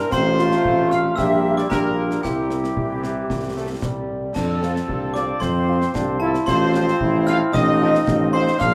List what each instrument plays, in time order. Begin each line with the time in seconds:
Already playing: trombone section E3, euphonium D4
0.10 tuba A1, trombone section F3 A3, french horn section A3 C4 F4, euphonium C4, flute section C5, trumpet section C5, glockenspiel C6, concert bass drum, snare, crash
0.39 euphonium F4, snare
0.52 snare
0.64 tuba A1, concert bass drum
0.90 trumpet section F5, flute section F5, glockenspiel F6, snare
1.16 tuba A#1, french horn section G3 D4 G4, trombone section G3 A#3, euphonium G4, trumpet section E5, flute section E5, glockenspiel E6, concert bass drum, snare
1.57 trumpet section D5, flute section D5, glockenspiel D6, snare
1.70 tuba A#1, french horn section G3 D4 G4, euphonium G4, trumpet section A#4, flute section A#4, glockenspiel A#5, concert bass drum, snare
1.97 euphonium F4
2.11 snare
2.22 tuba C2, trombone section E3 C4, french horn section G3 C4 E4, euphonium E4, trumpet section G4, flute section G4, glockenspiel G5, concert bass drum, snare, crash
2.50 snare
2.64 snare
2.75 tuba C2, trombone section E3, concert bass drum
3.04 snare
3.29 tuba C2, concert bass drum, snare
3.57 trombone section A3
3.82 tuba C2, trombone section G3, concert bass drum, snare
4.34 tuba F2, trombone section F3 C4, euphonium D4, flute section A4, trumpet section A4, glockenspiel A5, concert bass drum, snare, crash
4.62 french horn section F3 C4 F4, euphonium C4, snare
4.76 snare
4.87 tuba C2, euphonium D4, concert bass drum
5.14 french horn section F3 C4 F4, flute section D5, trumpet section D5, glockenspiel D6, snare
5.39 tuba F2, euphonium C4, flute section C5, trumpet section C5, glockenspiel C6, concert bass drum, snare
5.68 french horn section F3 C4 F4
5.82 snare
5.94 tuba C2, euphonium D4, concert bass drum, snare
6.20 french horn section F3 C4 F4, euphonium E4, flute section A4, trumpet section A4, glockenspiel A5
6.34 snare
6.46 tuba A1, trombone section F3 C4, euphonium F4, flute section C5, trumpet section C5, glockenspiel C6, concert bass drum, snare, crash
6.74 french horn section F3 C4 F4, snare
6.88 snare
7.00 tuba A1, euphonium E4, concert bass drum
7.26 french horn section F3 C4 F4, flute section F5, trumpet section F5, glockenspiel F6, snare
7.52 tuba A1, euphonium D#4, flute section D#5, trumpet section D#5, glockenspiel D#6, concert bass drum, snare
7.81 french horn section F3 C4 F4
7.95 snare
8.06 tuba A1, concert bass drum, snare
8.32 french horn section F3 C4 F4, flute section C5, trumpet section C5, glockenspiel C6
8.48 snare
8.59 tuba A#1, trombone section F3 D4, euphonium D4, trumpet section F5, flute section F5, glockenspiel F6, concert bass drum, snare, crash